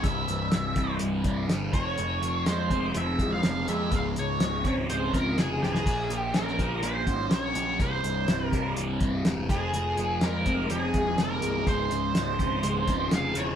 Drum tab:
CC |----------------|----------------|----------------|x---------------|
HH |x-x-x-x-x-x-x-x-|x-x-x-x-x-x-x-x-|x-x-x-x-x-x-x---|x-x-x-x-x-x-x-x-|
SD |----o-------o---|----o-------o---|----o-------o-oo|----oo------o---|
BD |o-----o---o---o-|------o---o-----|o-----o---o-----|o-----o---o-----|

CC |----------------|----------------|----------------|
HH |x-x-x-x-x-x-x-x-|x-x-x-x-x-x-x-x-|x-x-x-x-x-x-x-x-|
SD |----o-------o---|----o-------o---|----o-------o---|
BD |o-----o---o---o-|------o---o-----|o-----o---o-----|